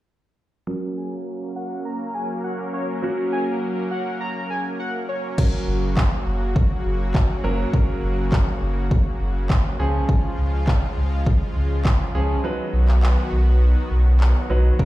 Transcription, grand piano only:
0, 0, Header, 1, 2, 480
1, 0, Start_track
1, 0, Key_signature, 6, "major"
1, 0, Tempo, 588235
1, 552, Time_signature, 4, 2, 24, 8
1, 12118, End_track
2, 0, Start_track
2, 0, Title_t, "Grand piano"
2, 0, Program_c, 0, 0
2, 547, Note_on_c, 0, 54, 71
2, 551, Note_on_c, 0, 61, 63
2, 555, Note_on_c, 0, 70, 78
2, 2437, Note_off_c, 0, 54, 0
2, 2439, Note_off_c, 0, 61, 0
2, 2441, Note_off_c, 0, 70, 0
2, 2467, Note_on_c, 0, 54, 73
2, 2472, Note_on_c, 0, 61, 66
2, 2476, Note_on_c, 0, 66, 79
2, 4117, Note_off_c, 0, 54, 0
2, 4119, Note_off_c, 0, 61, 0
2, 4121, Note_off_c, 0, 66, 0
2, 4389, Note_on_c, 0, 54, 82
2, 4391, Note_on_c, 0, 61, 76
2, 4393, Note_on_c, 0, 70, 89
2, 5133, Note_off_c, 0, 54, 0
2, 5134, Note_off_c, 0, 61, 0
2, 5135, Note_off_c, 0, 70, 0
2, 6069, Note_on_c, 0, 54, 89
2, 6071, Note_on_c, 0, 61, 77
2, 6073, Note_on_c, 0, 70, 95
2, 6256, Note_off_c, 0, 54, 0
2, 6257, Note_off_c, 0, 61, 0
2, 6258, Note_off_c, 0, 70, 0
2, 6310, Note_on_c, 0, 54, 83
2, 6312, Note_on_c, 0, 61, 74
2, 6314, Note_on_c, 0, 70, 88
2, 7053, Note_off_c, 0, 54, 0
2, 7054, Note_off_c, 0, 61, 0
2, 7055, Note_off_c, 0, 70, 0
2, 7990, Note_on_c, 0, 53, 90
2, 7991, Note_on_c, 0, 61, 79
2, 7994, Note_on_c, 0, 68, 101
2, 8759, Note_off_c, 0, 53, 0
2, 8759, Note_off_c, 0, 61, 0
2, 8761, Note_off_c, 0, 68, 0
2, 9910, Note_on_c, 0, 53, 83
2, 9912, Note_on_c, 0, 61, 80
2, 9914, Note_on_c, 0, 68, 98
2, 10096, Note_off_c, 0, 53, 0
2, 10097, Note_off_c, 0, 61, 0
2, 10098, Note_off_c, 0, 68, 0
2, 10149, Note_on_c, 0, 54, 84
2, 10151, Note_on_c, 0, 63, 78
2, 10153, Note_on_c, 0, 71, 92
2, 10893, Note_off_c, 0, 54, 0
2, 10894, Note_off_c, 0, 63, 0
2, 10895, Note_off_c, 0, 71, 0
2, 11829, Note_on_c, 0, 54, 84
2, 11831, Note_on_c, 0, 63, 77
2, 11834, Note_on_c, 0, 71, 90
2, 12016, Note_off_c, 0, 54, 0
2, 12017, Note_off_c, 0, 63, 0
2, 12018, Note_off_c, 0, 71, 0
2, 12069, Note_on_c, 0, 54, 82
2, 12071, Note_on_c, 0, 61, 73
2, 12073, Note_on_c, 0, 70, 90
2, 12118, Note_off_c, 0, 54, 0
2, 12118, Note_off_c, 0, 61, 0
2, 12118, Note_off_c, 0, 70, 0
2, 12118, End_track
0, 0, End_of_file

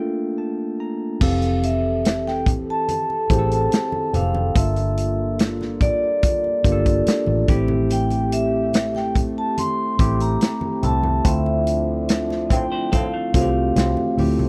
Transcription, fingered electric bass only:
0, 0, Header, 1, 3, 480
1, 0, Start_track
1, 0, Tempo, 836820
1, 695, Time_signature, 4, 2, 24, 8
1, 8310, End_track
2, 0, Start_track
2, 0, Title_t, "Fingered electric bass"
2, 0, Program_c, 0, 33
2, 695, Note_on_c, 0, 29, 103
2, 1512, Note_off_c, 0, 29, 0
2, 1892, Note_on_c, 0, 33, 87
2, 2102, Note_off_c, 0, 33, 0
2, 2372, Note_on_c, 0, 29, 82
2, 2582, Note_off_c, 0, 29, 0
2, 2613, Note_on_c, 0, 31, 101
2, 3431, Note_off_c, 0, 31, 0
2, 3812, Note_on_c, 0, 31, 99
2, 4021, Note_off_c, 0, 31, 0
2, 4171, Note_on_c, 0, 33, 95
2, 4277, Note_off_c, 0, 33, 0
2, 4293, Note_on_c, 0, 33, 104
2, 5231, Note_off_c, 0, 33, 0
2, 5731, Note_on_c, 0, 33, 89
2, 5941, Note_off_c, 0, 33, 0
2, 6212, Note_on_c, 0, 36, 86
2, 6421, Note_off_c, 0, 36, 0
2, 6452, Note_on_c, 0, 38, 90
2, 7270, Note_off_c, 0, 38, 0
2, 7653, Note_on_c, 0, 36, 90
2, 7861, Note_off_c, 0, 36, 0
2, 7892, Note_on_c, 0, 36, 93
2, 7997, Note_off_c, 0, 36, 0
2, 8131, Note_on_c, 0, 38, 81
2, 8236, Note_off_c, 0, 38, 0
2, 8255, Note_on_c, 0, 36, 78
2, 8310, Note_off_c, 0, 36, 0
2, 8310, End_track
3, 0, Start_track
3, 0, Title_t, "Muted fingered electric bass strokes"
3, 4053, Note_on_c, 9, 29, 49
3, 4110, Note_off_c, 9, 29, 0
3, 8310, End_track
0, 0, End_of_file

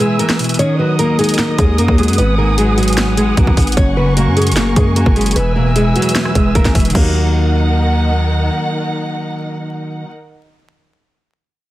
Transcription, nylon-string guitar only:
0, 0, Header, 1, 2, 480
1, 0, Start_track
1, 0, Tempo, 397351
1, 715, Time_signature, 4, 2, 24, 8
1, 14141, End_track
2, 0, Start_track
2, 0, Title_t, "Nylon-string guitar"
2, 0, Program_c, 0, 24
2, 0, Note_on_c, 0, 68, 87
2, 6, Note_on_c, 0, 56, 68
2, 205, Note_off_c, 0, 68, 0
2, 210, Note_off_c, 0, 56, 0
2, 235, Note_on_c, 0, 70, 77
2, 245, Note_on_c, 0, 58, 67
2, 445, Note_off_c, 0, 70, 0
2, 450, Note_off_c, 0, 58, 0
2, 714, Note_on_c, 0, 73, 95
2, 724, Note_on_c, 0, 61, 79
2, 924, Note_off_c, 0, 73, 0
2, 930, Note_off_c, 0, 61, 0
2, 956, Note_on_c, 0, 71, 65
2, 966, Note_on_c, 0, 59, 54
2, 1165, Note_off_c, 0, 71, 0
2, 1170, Note_off_c, 0, 59, 0
2, 1196, Note_on_c, 0, 70, 79
2, 1206, Note_on_c, 0, 58, 71
2, 1405, Note_off_c, 0, 70, 0
2, 1411, Note_off_c, 0, 58, 0
2, 1434, Note_on_c, 0, 68, 78
2, 1445, Note_on_c, 0, 56, 60
2, 1644, Note_off_c, 0, 68, 0
2, 1650, Note_off_c, 0, 56, 0
2, 1674, Note_on_c, 0, 70, 89
2, 1684, Note_on_c, 0, 58, 68
2, 1884, Note_off_c, 0, 70, 0
2, 1890, Note_off_c, 0, 58, 0
2, 1914, Note_on_c, 0, 68, 91
2, 1923, Note_on_c, 0, 56, 70
2, 2124, Note_off_c, 0, 68, 0
2, 2129, Note_off_c, 0, 56, 0
2, 2156, Note_on_c, 0, 70, 80
2, 2165, Note_on_c, 0, 58, 61
2, 2365, Note_off_c, 0, 70, 0
2, 2370, Note_off_c, 0, 58, 0
2, 2397, Note_on_c, 0, 68, 77
2, 2407, Note_on_c, 0, 56, 59
2, 2606, Note_off_c, 0, 68, 0
2, 2611, Note_off_c, 0, 56, 0
2, 2636, Note_on_c, 0, 71, 100
2, 2645, Note_on_c, 0, 59, 78
2, 2845, Note_off_c, 0, 71, 0
2, 2850, Note_off_c, 0, 59, 0
2, 2876, Note_on_c, 0, 70, 75
2, 2885, Note_on_c, 0, 58, 55
2, 3085, Note_off_c, 0, 70, 0
2, 3090, Note_off_c, 0, 58, 0
2, 3114, Note_on_c, 0, 68, 87
2, 3124, Note_on_c, 0, 56, 74
2, 3324, Note_off_c, 0, 68, 0
2, 3329, Note_off_c, 0, 56, 0
2, 3353, Note_on_c, 0, 66, 75
2, 3363, Note_on_c, 0, 54, 56
2, 3805, Note_off_c, 0, 66, 0
2, 3810, Note_off_c, 0, 54, 0
2, 3835, Note_on_c, 0, 68, 97
2, 3845, Note_on_c, 0, 56, 73
2, 4045, Note_off_c, 0, 68, 0
2, 4050, Note_off_c, 0, 56, 0
2, 4074, Note_on_c, 0, 70, 78
2, 4084, Note_on_c, 0, 58, 60
2, 4284, Note_off_c, 0, 70, 0
2, 4289, Note_off_c, 0, 58, 0
2, 4554, Note_on_c, 0, 73, 98
2, 4564, Note_on_c, 0, 61, 83
2, 4764, Note_off_c, 0, 73, 0
2, 4770, Note_off_c, 0, 61, 0
2, 4794, Note_on_c, 0, 71, 66
2, 4804, Note_on_c, 0, 59, 56
2, 5004, Note_off_c, 0, 71, 0
2, 5009, Note_off_c, 0, 59, 0
2, 5036, Note_on_c, 0, 70, 81
2, 5046, Note_on_c, 0, 58, 70
2, 5245, Note_off_c, 0, 70, 0
2, 5251, Note_off_c, 0, 58, 0
2, 5275, Note_on_c, 0, 68, 79
2, 5285, Note_on_c, 0, 56, 56
2, 5485, Note_off_c, 0, 68, 0
2, 5490, Note_off_c, 0, 56, 0
2, 5515, Note_on_c, 0, 70, 76
2, 5524, Note_on_c, 0, 58, 64
2, 5724, Note_off_c, 0, 70, 0
2, 5730, Note_off_c, 0, 58, 0
2, 5755, Note_on_c, 0, 68, 93
2, 5764, Note_on_c, 0, 56, 61
2, 5964, Note_off_c, 0, 68, 0
2, 5969, Note_off_c, 0, 56, 0
2, 5993, Note_on_c, 0, 70, 77
2, 6003, Note_on_c, 0, 58, 62
2, 6204, Note_off_c, 0, 70, 0
2, 6209, Note_off_c, 0, 58, 0
2, 6236, Note_on_c, 0, 68, 81
2, 6245, Note_on_c, 0, 56, 57
2, 6445, Note_off_c, 0, 68, 0
2, 6450, Note_off_c, 0, 56, 0
2, 6476, Note_on_c, 0, 71, 104
2, 6486, Note_on_c, 0, 59, 88
2, 6685, Note_off_c, 0, 71, 0
2, 6691, Note_off_c, 0, 59, 0
2, 6714, Note_on_c, 0, 70, 71
2, 6724, Note_on_c, 0, 58, 57
2, 6924, Note_off_c, 0, 70, 0
2, 6930, Note_off_c, 0, 58, 0
2, 6957, Note_on_c, 0, 68, 92
2, 6966, Note_on_c, 0, 56, 70
2, 7165, Note_off_c, 0, 68, 0
2, 7171, Note_off_c, 0, 56, 0
2, 7197, Note_on_c, 0, 66, 74
2, 7207, Note_on_c, 0, 54, 60
2, 7647, Note_off_c, 0, 66, 0
2, 7652, Note_off_c, 0, 54, 0
2, 7676, Note_on_c, 0, 68, 90
2, 7686, Note_on_c, 0, 56, 71
2, 7885, Note_off_c, 0, 68, 0
2, 7891, Note_off_c, 0, 56, 0
2, 7916, Note_on_c, 0, 70, 77
2, 7926, Note_on_c, 0, 58, 63
2, 8125, Note_off_c, 0, 70, 0
2, 8131, Note_off_c, 0, 58, 0
2, 8397, Note_on_c, 0, 58, 85
2, 9788, Note_off_c, 0, 58, 0
2, 14141, End_track
0, 0, End_of_file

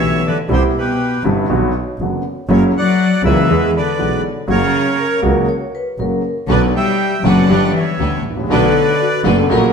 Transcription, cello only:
0, 0, Header, 1, 2, 480
1, 0, Start_track
1, 0, Key_signature, 2, "minor"
1, 0, Tempo, 500000
1, 473, Time_signature, 4, 2, 24, 8
1, 9340, End_track
2, 0, Start_track
2, 0, Title_t, "Cello"
2, 0, Program_c, 0, 42
2, 0, Note_on_c, 0, 52, 69
2, 204, Note_off_c, 0, 52, 0
2, 267, Note_on_c, 0, 50, 57
2, 368, Note_off_c, 0, 50, 0
2, 497, Note_on_c, 0, 48, 65
2, 600, Note_off_c, 0, 48, 0
2, 722, Note_on_c, 0, 47, 55
2, 1166, Note_off_c, 0, 47, 0
2, 2399, Note_on_c, 0, 49, 71
2, 2506, Note_off_c, 0, 49, 0
2, 2636, Note_on_c, 0, 54, 79
2, 3078, Note_off_c, 0, 54, 0
2, 3136, Note_on_c, 0, 52, 80
2, 3569, Note_off_c, 0, 52, 0
2, 3611, Note_on_c, 0, 50, 58
2, 4045, Note_off_c, 0, 50, 0
2, 4320, Note_on_c, 0, 49, 89
2, 4993, Note_off_c, 0, 49, 0
2, 6213, Note_on_c, 0, 50, 65
2, 6326, Note_off_c, 0, 50, 0
2, 6466, Note_on_c, 0, 55, 77
2, 6919, Note_off_c, 0, 55, 0
2, 6925, Note_on_c, 0, 54, 78
2, 7388, Note_off_c, 0, 54, 0
2, 7417, Note_on_c, 0, 52, 59
2, 7873, Note_off_c, 0, 52, 0
2, 8148, Note_on_c, 0, 50, 87
2, 8832, Note_off_c, 0, 50, 0
2, 9340, End_track
0, 0, End_of_file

